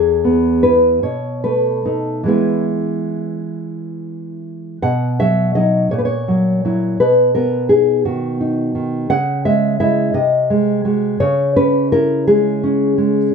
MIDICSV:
0, 0, Header, 1, 2, 480
1, 0, Start_track
1, 0, Key_signature, 4, "major"
1, 0, Tempo, 789474
1, 868, Tempo, 859599
1, 1344, Time_signature, 6, 3, 24, 8
1, 2308, Tempo, 817439
1, 2788, Tempo, 724638
1, 2789, Key_signature, 5, "major"
1, 4228, Tempo, 705053
1, 8550, End_track
2, 0, Start_track
2, 0, Title_t, "Nylon-string guitar"
2, 0, Program_c, 0, 24
2, 0, Note_on_c, 0, 40, 64
2, 0, Note_on_c, 0, 68, 87
2, 149, Note_on_c, 0, 59, 56
2, 361, Note_off_c, 0, 68, 0
2, 380, Note_off_c, 0, 59, 0
2, 382, Note_on_c, 0, 71, 76
2, 384, Note_on_c, 0, 64, 44
2, 388, Note_on_c, 0, 59, 45
2, 600, Note_off_c, 0, 64, 0
2, 601, Note_off_c, 0, 40, 0
2, 601, Note_off_c, 0, 59, 0
2, 613, Note_off_c, 0, 71, 0
2, 626, Note_on_c, 0, 47, 50
2, 626, Note_on_c, 0, 73, 65
2, 860, Note_off_c, 0, 73, 0
2, 874, Note_on_c, 0, 71, 73
2, 877, Note_on_c, 0, 57, 42
2, 1096, Note_off_c, 0, 71, 0
2, 1100, Note_off_c, 0, 57, 0
2, 1106, Note_on_c, 0, 57, 34
2, 1106, Note_on_c, 0, 63, 55
2, 1319, Note_on_c, 0, 52, 52
2, 1323, Note_off_c, 0, 57, 0
2, 1325, Note_off_c, 0, 47, 0
2, 1330, Note_on_c, 0, 56, 42
2, 1335, Note_off_c, 0, 63, 0
2, 1339, Note_on_c, 0, 59, 40
2, 1344, Note_on_c, 0, 64, 59
2, 2534, Note_off_c, 0, 64, 0
2, 2753, Note_off_c, 0, 52, 0
2, 2759, Note_off_c, 0, 56, 0
2, 2764, Note_off_c, 0, 59, 0
2, 2788, Note_on_c, 0, 78, 80
2, 2790, Note_on_c, 0, 47, 61
2, 3023, Note_off_c, 0, 78, 0
2, 3033, Note_on_c, 0, 54, 53
2, 3035, Note_on_c, 0, 76, 83
2, 3264, Note_off_c, 0, 76, 0
2, 3266, Note_off_c, 0, 54, 0
2, 3270, Note_on_c, 0, 75, 71
2, 3273, Note_on_c, 0, 54, 45
2, 3279, Note_on_c, 0, 63, 46
2, 3489, Note_off_c, 0, 54, 0
2, 3490, Note_off_c, 0, 63, 0
2, 3492, Note_off_c, 0, 47, 0
2, 3501, Note_off_c, 0, 75, 0
2, 3508, Note_on_c, 0, 73, 73
2, 3511, Note_on_c, 0, 46, 54
2, 3554, Note_off_c, 0, 73, 0
2, 3556, Note_on_c, 0, 71, 56
2, 3597, Note_off_c, 0, 71, 0
2, 3600, Note_on_c, 0, 73, 69
2, 3754, Note_on_c, 0, 54, 49
2, 3988, Note_off_c, 0, 54, 0
2, 3996, Note_on_c, 0, 54, 39
2, 4000, Note_on_c, 0, 64, 41
2, 4204, Note_off_c, 0, 73, 0
2, 4208, Note_off_c, 0, 46, 0
2, 4208, Note_off_c, 0, 54, 0
2, 4211, Note_off_c, 0, 64, 0
2, 4230, Note_on_c, 0, 71, 79
2, 4233, Note_on_c, 0, 47, 63
2, 4458, Note_off_c, 0, 71, 0
2, 4466, Note_on_c, 0, 70, 81
2, 4470, Note_on_c, 0, 59, 50
2, 4695, Note_off_c, 0, 70, 0
2, 4701, Note_on_c, 0, 68, 71
2, 4705, Note_on_c, 0, 63, 45
2, 4936, Note_off_c, 0, 68, 0
2, 4946, Note_on_c, 0, 51, 43
2, 4946, Note_on_c, 0, 66, 70
2, 5177, Note_off_c, 0, 63, 0
2, 5183, Note_off_c, 0, 59, 0
2, 5186, Note_on_c, 0, 63, 47
2, 5412, Note_off_c, 0, 51, 0
2, 5421, Note_on_c, 0, 51, 41
2, 5635, Note_off_c, 0, 66, 0
2, 5638, Note_off_c, 0, 47, 0
2, 5658, Note_on_c, 0, 78, 89
2, 5661, Note_off_c, 0, 51, 0
2, 5661, Note_on_c, 0, 49, 66
2, 5662, Note_off_c, 0, 63, 0
2, 5886, Note_off_c, 0, 78, 0
2, 5898, Note_on_c, 0, 56, 52
2, 5900, Note_on_c, 0, 76, 78
2, 6125, Note_off_c, 0, 76, 0
2, 6128, Note_off_c, 0, 56, 0
2, 6135, Note_on_c, 0, 56, 46
2, 6136, Note_on_c, 0, 76, 82
2, 6138, Note_on_c, 0, 64, 50
2, 6351, Note_off_c, 0, 56, 0
2, 6352, Note_off_c, 0, 49, 0
2, 6352, Note_off_c, 0, 64, 0
2, 6365, Note_off_c, 0, 76, 0
2, 6366, Note_on_c, 0, 48, 61
2, 6368, Note_on_c, 0, 75, 76
2, 6613, Note_on_c, 0, 56, 53
2, 6841, Note_off_c, 0, 56, 0
2, 6849, Note_on_c, 0, 56, 43
2, 6852, Note_on_c, 0, 66, 47
2, 7065, Note_off_c, 0, 75, 0
2, 7069, Note_off_c, 0, 56, 0
2, 7071, Note_off_c, 0, 48, 0
2, 7071, Note_off_c, 0, 66, 0
2, 7089, Note_on_c, 0, 49, 69
2, 7090, Note_on_c, 0, 73, 91
2, 7326, Note_off_c, 0, 73, 0
2, 7336, Note_on_c, 0, 61, 61
2, 7337, Note_on_c, 0, 71, 90
2, 7571, Note_off_c, 0, 71, 0
2, 7580, Note_on_c, 0, 64, 55
2, 7580, Note_on_c, 0, 70, 85
2, 7814, Note_off_c, 0, 70, 0
2, 7820, Note_on_c, 0, 68, 81
2, 7824, Note_on_c, 0, 56, 53
2, 8057, Note_off_c, 0, 61, 0
2, 8065, Note_on_c, 0, 61, 57
2, 8292, Note_off_c, 0, 56, 0
2, 8300, Note_on_c, 0, 56, 51
2, 8307, Note_off_c, 0, 64, 0
2, 8519, Note_off_c, 0, 49, 0
2, 8520, Note_off_c, 0, 68, 0
2, 8546, Note_off_c, 0, 56, 0
2, 8548, Note_off_c, 0, 61, 0
2, 8550, End_track
0, 0, End_of_file